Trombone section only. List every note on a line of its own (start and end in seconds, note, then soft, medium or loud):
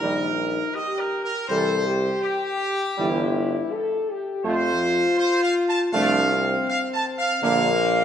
0.00 0.27 D#3 medium
0.00 0.27 G3 medium
1.50 1.76 E3 medium
1.50 1.76 G3 medium
2.97 3.24 E3 loud
2.97 3.24 G3 loud
4.44 4.71 F3 loud
4.44 4.70 A3 loud
5.93 6.20 F3 loud
5.93 6.20 A3 loud
7.42 7.69 D3 loud
7.42 7.69 A#3 loud